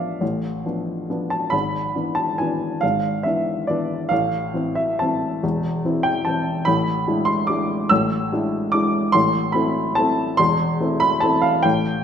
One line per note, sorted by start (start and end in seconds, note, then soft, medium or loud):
0.00 0.21 A1 soft
0.00 0.21 A2 soft
0.00 0.24 F3 soft
0.00 0.24 B3 soft
0.00 0.24 D4 soft
0.00 0.24 D5 medium
0.00 0.24 E5 medium
0.00 1.31 F5 medium
0.21 0.64 A1 soft
0.21 0.64 A2 soft
0.66 1.06 F3 soft
0.66 1.07 B3 soft
0.66 1.07 D4 soft
1.10 1.49 F3 soft
1.10 1.49 B3 soft
1.10 1.49 D4 soft
1.30 1.52 A5 medium
1.50 1.93 G#1 soft
1.50 1.93 G#2 soft
1.50 2.15 B5 medium
1.96 2.35 E3 soft
1.96 2.35 B3 soft
1.96 2.35 D4 soft
2.15 2.38 A5 medium
2.38 2.79 E3 soft
2.38 2.79 B3 soft
2.38 2.80 D4 soft
2.38 2.82 G#5 medium
2.81 3.24 G#1 soft
2.81 3.24 G#2 soft
2.81 3.24 F5 medium
3.23 3.65 E3 soft
3.23 3.65 B3 soft
3.23 3.65 D4 soft
3.23 3.68 E5 medium
3.67 4.07 E3 soft
3.67 4.07 B3 soft
3.67 4.08 D4 soft
3.67 4.10 D5 medium
4.09 4.52 A1 soft
4.09 4.52 A2 soft
4.09 4.75 F5 medium
4.54 4.97 E3 soft
4.54 4.97 C4 soft
4.54 4.97 E4 soft
4.75 5.00 E5 medium
4.99 5.40 E3 soft
4.99 5.40 C4 soft
4.99 5.40 E4 soft
4.99 6.04 A5 medium
5.43 5.82 E1 soft
5.43 5.82 E2 medium
5.85 6.22 E3 soft
5.85 6.22 C4 soft
5.85 6.23 E4 soft
6.03 6.25 G5 medium
6.25 6.63 E3 soft
6.25 6.63 C4 soft
6.25 6.63 E4 soft
6.25 6.66 A5 medium
6.65 7.05 A1 medium
6.65 7.05 A2 soft
6.65 7.26 B5 medium
7.07 7.45 G#3 soft
7.07 7.45 D4 soft
7.07 7.45 E4 soft
7.25 7.47 C6 medium
7.47 7.87 G#3 soft
7.47 7.87 D4 soft
7.47 7.87 E4 soft
7.47 7.90 D6 medium
7.89 8.31 A1 medium
7.89 8.31 A2 soft
7.89 8.73 E6 medium
8.32 8.70 G#3 soft
8.32 8.71 D4 soft
8.32 8.71 E4 soft
8.72 9.11 G#3 soft
8.72 9.11 D4 soft
8.72 9.11 E4 soft
8.72 9.14 D6 medium
9.12 9.53 A1 medium
9.12 9.53 A2 soft
9.12 9.53 C6 medium
9.52 9.93 A3 soft
9.52 9.93 C4 soft
9.52 9.93 E4 soft
9.52 9.96 B5 medium
9.95 10.35 A3 soft
9.95 10.35 C4 soft
9.95 10.36 E4 soft
9.95 10.38 A5 medium
10.37 10.79 E1 soft
10.37 10.79 E2 medium
10.37 11.00 C6 medium
10.80 11.18 A3 soft
10.80 11.18 C4 soft
10.80 11.18 E4 soft
11.00 11.21 B5 medium
11.20 11.61 A3 soft
11.20 11.61 C4 soft
11.20 11.61 E4 soft
11.20 11.43 A5 medium
11.42 11.63 F5 medium
11.63 12.04 A1 medium
11.63 12.04 A2 soft
11.63 12.04 G5 medium